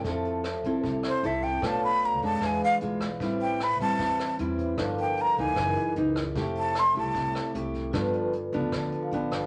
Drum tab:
HH |xxxxxxxx|xxxxxxxx|xxxxxxxx|xxxxxxxx|
SD |--r--r--|r---r--r|--r--r--|r---r--r|
BD |o--oo--o|o--oo--o|o--oo--o|o--oo--o|

HH |xxxxxxxx|xxxxxxxx|
SD |--r--r--|r---r--r|
BD |o--oo--o|o--oo--o|